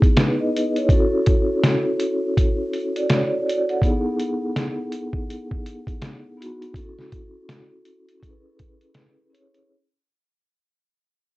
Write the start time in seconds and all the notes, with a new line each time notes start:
Already playing: G#4
0.02 kick, closed hi-hat
0.16 D#4 B4, snare, closed hi-hat
0.40 D#5
0.56 closed hi-hat
0.76 E4 C#5, closed hi-hat
0.89 C#4 E4 F#4 A4, kick, closed hi-hat
1.26 kick, closed hi-hat
1.64 snare, closed hi-hat
2.00 closed hi-hat
2.37 kick, closed hi-hat
2.73 closed hi-hat
2.96 F#4 D5, closed hi-hat
3.10 C#5, snare, closed hi-hat
3.47 F#4 D5, closed hi-hat
3.69 A4 F#5, closed hi-hat
3.82 B3 D#4 E4 G#4, kick, closed hi-hat
4.20 closed hi-hat
4.56 snare, closed hi-hat
4.92 closed hi-hat
5.13 kick
5.31 closed hi-hat
5.52 kick
5.66 closed hi-hat
5.87 kick, closed hi-hat
6.02 snare, closed hi-hat
6.37 B3 D#4 E4 F#4
6.42 closed hi-hat
6.62 closed hi-hat
6.74 C#4 E4 F#4 A4, kick, closed hi-hat
6.99 snare
7.12 kick, closed hi-hat
7.49 snare, closed hi-hat
7.85 closed hi-hat
8.08 closed hi-hat
8.20 C#4 E4 G#4 A4, kick, closed hi-hat
8.30 B4
8.59 kick, closed hi-hat
8.81 closed hi-hat
8.95 snare, closed hi-hat
9.30 C#4 E4 G#4 C#5
9.35 closed hi-hat
9.54 closed hi-hat